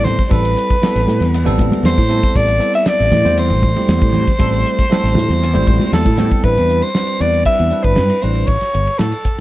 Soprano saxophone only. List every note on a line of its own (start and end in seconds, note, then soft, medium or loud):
0.04 0.25 C5 medium
0.25 0.33 C5 medium
0.31 1.57 B4 medium
1.85 2.38 C5 medium
2.36 2.74 D5 loud
2.75 2.89 E5 medium
2.88 3.38 D5 loud
3.39 5.89 C5 medium
5.93 6.45 A4 medium
6.44 6.84 B4 medium
6.82 7.23 C5 medium
7.21 7.45 D5 medium
7.46 7.85 E5 loud
7.84 8.23 B4 medium
8.22 8.48 C5 medium
8.47 9.00 C#5 medium
8.99 9.40 A4 medium